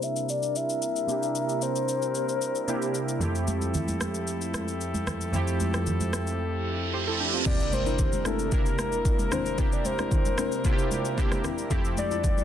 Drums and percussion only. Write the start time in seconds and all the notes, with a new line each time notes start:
0.02 shaker
0.16 shaker
0.29 shaker
0.43 shaker
0.56 shaker
0.70 shaker
0.82 shaker
0.96 shaker
1.09 shaker
1.23 shaker
1.35 shaker
1.49 shaker
1.62 shaker
1.76 shaker
1.89 shaker
2.02 shaker
2.15 shaker
2.29 shaker
2.42 shaker
2.55 shaker
2.68 shaker
2.82 shaker
2.95 shaker
3.09 shaker
3.21 low conga, shaker
3.35 shaker
3.48 high conga, shaker
3.62 high conga, shaker
3.74 low conga, shaker
3.88 high conga, shaker
4.01 cross-stick, high conga, shaker
4.14 shaker
4.27 shaker
4.41 shaker
4.54 cross-stick, high conga, shaker
4.68 shaker
4.81 shaker
4.94 high conga, shaker
5.07 cross-stick, high conga, low conga, shaker
5.21 shaker
5.34 low conga, shaker
5.48 shaker
5.60 high conga, shaker
5.74 cross-stick, high conga, shaker
5.87 low conga, shaker
6.00 high conga, shaker
6.13 cross-stick, high conga, shaker
6.27 shaker
7.46 kick, crash, low conga, shaker
7.60 shaker
7.72 high conga, shaker
7.86 high conga, shaker
7.99 kick, low conga, shaker
8.13 high conga, shaker
8.25 cross-stick, high conga, shaker
8.39 shaker
8.52 kick, shaker
8.66 shaker
8.79 cross-stick, high conga, shaker
8.92 shaker
9.05 kick, shaker
9.19 high conga, shaker
9.32 cross-stick, high conga, low conga, shaker
9.46 shaker
9.58 kick, low conga, shaker
9.72 shaker
9.85 high conga, shaker
9.99 cross-stick, high conga, shaker
10.11 kick, low conga, shaker
10.25 high conga, shaker
10.38 cross-stick, high conga, shaker
10.52 shaker
10.65 kick, shaker
10.79 shaker
10.91 high conga, shaker
11.05 shaker
11.18 kick, shaker
11.31 cross-stick, high conga, shaker
11.44 cross-stick, high conga, low conga, shaker
11.58 shaker
11.71 kick, low conga, shaker
11.85 shaker
11.97 high conga, shaker
12.11 high conga, shaker
12.24 kick, low conga, shaker
12.38 high conga, shaker